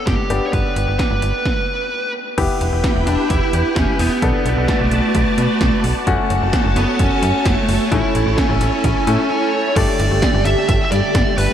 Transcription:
Already playing: grand piano B3 D4 G4
0.07 fm bass G1, lead electric guitar G4, kick, snare, closed hi-hat
0.30 fm bass G1, grand piano B3 D4 G4, closed hi-hat
0.46 lead electric guitar C#5
0.53 fm bass G1, lead electric guitar B4, kick, closed hi-hat
0.76 fm bass G1, closed hi-hat
0.88 fm bass G1
0.99 lead electric guitar B4, kick, snare, closed hi-hat
1.11 fm bass G1
1.22 fm bass G1, closed hi-hat
1.46 kick, snare
2.38 fm bass E1, grand piano B3 E4 G4, string machine E4 G4 B4 G5, kick, closed hi-hat, crash
2.61 fm bass E1, closed hi-hat
2.72 fm bass E1
2.84 kick, snare, closed hi-hat
2.96 fm bass E1
3.07 fm bass E1, lead electric guitar D4, closed hi-hat
3.30 fm bass E1, lead electric guitar E4, kick, closed hi-hat
3.53 fm bass E2, closed hi-hat
3.76 fm bass E1, lead electric guitar C#4, kick, snare, closed hi-hat
3.99 fm bass E1, lead electric guitar B3, open hi-hat
4.22 fm bass B1, grand piano B3 D4 A4, string machine F#4 B4 D5 A5, kick, closed hi-hat
4.45 fm bass B1, closed hi-hat
4.57 fm bass B1
4.68 lead electric guitar A3, kick, snare, closed hi-hat
4.80 fm bass B1
4.91 fm bass B1, closed hi-hat
5.15 fm bass B1, kick, closed hi-hat
5.38 fm bass B2, closed hi-hat
5.61 fm bass B1, kick, snare, closed hi-hat
5.84 fm bass B1, open hi-hat
6.07 fm bass F#1, grand piano A3 C#4 F#4, string machine F#4 A4 C#5 A5, kick, closed hi-hat
6.30 fm bass F#1, closed hi-hat
6.42 fm bass F#1
6.53 kick, snare, closed hi-hat
6.65 fm bass F#1
6.76 fm bass F#1, lead electric guitar B3, closed hi-hat
6.99 fm bass F#1, lead electric guitar C#4, kick, closed hi-hat
7.22 fm bass F#2, closed hi-hat
7.45 fm bass F#1, lead electric guitar A3, kick, snare, closed hi-hat
7.69 fm bass F#1, open hi-hat
7.92 fm bass A1, grand piano A3 C#4 E4, lead electric guitar E4, string machine E4 A4, kick, closed hi-hat
8.15 fm bass A1, closed hi-hat
8.26 fm bass A1
8.38 lead electric guitar C#4, kick, snare, closed hi-hat
8.49 fm bass A1
8.61 fm bass A1, closed hi-hat
8.84 fm bass A1, kick, closed hi-hat
9.07 fm bass A2, grand piano A3 C#4 E4, closed hi-hat
9.30 lead electric guitar C#5
9.76 fm bass G1, string machine D3 G3 A3 G4, grand piano A3 D4 G4 A4, lead electric guitar D5, kick, closed hi-hat, crash
10.00 fm bass G1, closed hi-hat
10.11 fm bass G1
10.22 kick, snare, closed hi-hat
10.34 fm bass G1
10.45 fm bass G1, lead electric guitar E5, closed hi-hat
10.69 fm bass G1, lead electric guitar E5, kick, closed hi-hat
10.85 lead electric guitar E5
10.92 fm bass G2, lead electric guitar D5, closed hi-hat
11.15 fm bass G1, kick, snare, closed hi-hat
11.38 fm bass G1, lead electric guitar B4, open hi-hat

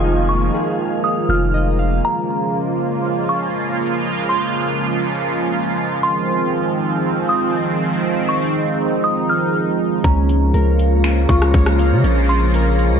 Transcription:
Already playing: 808-style bass F1, analog synth pad D#3 F3 G#3 F4, synth keys F4 D#5 F5, synth texture F4 G#5
0.04 analog synth pad A#3, synth keys D#4, synth texture F5
0.29 synth bell C#6
0.54 synth keys G#4
1.04 synth keys D#4, synth bell D#6
1.29 808-style bass F1, synth keys F4, synth bell F6
1.54 synth keys D#5
1.79 synth keys F5
2.04 analog synth pad C#3 F3 G#3 A#3 F4, synth bell A#5
3.29 synth bell C#6
4.04 analog synth pad C#3
4.29 synth bell C6
6.03 analog synth pad D#3 C4, synth bell C6
7.29 synth bell D#6
8.04 analog synth pad D#4
8.29 synth bell C#6
9.04 synth bell D#6
9.29 synth bell F6
10.04 808-style bass C#2, analog synth pad C#3 A#3 F4, synth keys C#4, synth texture F4 C#5 A#5, synth bell A#5, kick, closed hi-hat
10.29 closed hi-hat
10.54 808-style bass C#2, synth keys A#4, closed hi-hat
10.79 closed hi-hat
11.04 synth keys C#4, finger snap, closed hi-hat
11.29 808-style bass C#2, synth keys F4, synth bell C#6, kick, closed hi-hat
11.42 cross-stick
11.54 808-style bass C#2, synth keys C#5, kick, closed hi-hat
11.66 cross-stick
11.79 synth keys F5, closed hi-hat
11.92 808-style bass C#3
12.04 808-style bass A#1, synth keys C#4, synth texture G#4, closed hi-hat
12.29 synth bell C6, closed hi-hat
12.54 synth keys A#4, closed hi-hat
12.79 closed hi-hat
12.91 808-style bass C#2

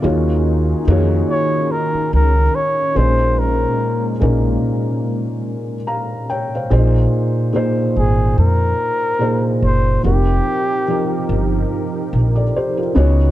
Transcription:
Already playing: analog synth pad F5
0.02 upright bass D#2, felt piano D#3 A#3 F4 F#4 G#4 C#5, analog synth pad D#3 C#4 D#4 G#4
0.88 upright bass F2, felt piano D#3 A#3 F4 F#4 G#4 C#5
1.30 flugelhorn C#5
1.72 flugelhorn A#4
1.94 muted upright bass stroke
2.13 upright bass C#2, flugelhorn A#4
2.55 flugelhorn C#5
2.95 upright bass A#1, felt piano A#2 A#3 C#4 D#4 G#4 C5, analog synth pad G#3 A#3, flugelhorn C5
3.39 flugelhorn A#4
4.20 upright bass A#1, felt piano A#2 A#3 C#4 D#4 G#4 A#4
5.87 felt piano F5 A#5
6.30 felt piano C#5 G5
6.55 felt piano C5 F5
6.70 upright bass A#1, felt piano A#2 A#3 C#4 G#4 C5
6.78 felt piano D#4
7.53 felt piano A#2 A#3 D#4 G#4 C5
7.96 upright bass G#1, flugelhorn G#4
8.38 upright bass F2, flugelhorn A#4
9.19 felt piano A#2 A#3 D#4 G#4 C5
9.62 upright bass F#1, flugelhorn C5
10.03 upright bass F1, felt piano F3 C4 D#4 G4 A#4, analog synth pad F3 D#4 G4 A#4, flugelhorn G4
10.88 felt piano F3 C4 D#4 G4 A#4
11.29 upright bass G1
12.13 upright bass A#1
12.35 felt piano A4 D5
12.56 felt piano G4 C5
12.77 felt piano F4 A#4
12.95 upright bass C#2, felt piano C#3 B3 D#4 F#4 C#5, analog synth pad C#3 B3 D#4 F#4

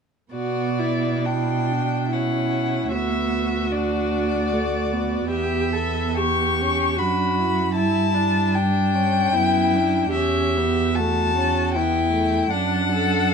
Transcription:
0.33 cello B2, viola B3, violin F#4 D5
0.79 violin E4
1.26 violin D4 G5, viola E4
1.71 viola D4
2.11 viola C#4, violin E4 F#5
2.90 cello D2, viola B3, violin F#4 E5
3.72 viola D4, violin D5
4.53 viola A3
4.92 viola B3
5.30 cello E2, violin G4 E5
5.73 violin A4
6.17 viola B3, violin G4 C#6
6.61 viola C#4
6.96 cello F#2, viola D4, violin F#4 B5
7.39 viola E4
7.74 cello G2, violin E4 A5
7.79 viola E4
8.14 violin D4
8.55 viola D4, violin G5
8.95 viola C#4
9.32 cello F#2, viola B3, violin E4
9.75 viola D4
10.11 cello E2, violin G4 E5
10.15 viola C#4
10.57 viola B3
10.95 viola A3, violin F#4 A5
11.36 viola C#4
11.74 viola B3, violin E4 G5
12.13 viola A3
12.51 cello F#2, violin D4 F#5, viola D4
12.92 violin A4

